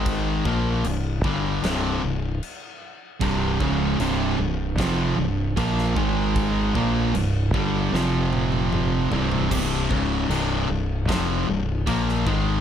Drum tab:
CC |x---x---x---x---|x---x---x---x---|x---x-----------|x---x---x---x---|
SD |--------o-------|--------o----o--|--------o-------|--------o----o--|
T1 |----------------|----------------|----------oo----|----------------|
T2 |----------------|----------------|------------o---|----------------|
FT |----------------|----------------|--------------oo|----------------|
BD |o-o---o---------|o-o-----o---o-o-|o-o---o---------|o-o-----o---o-o-|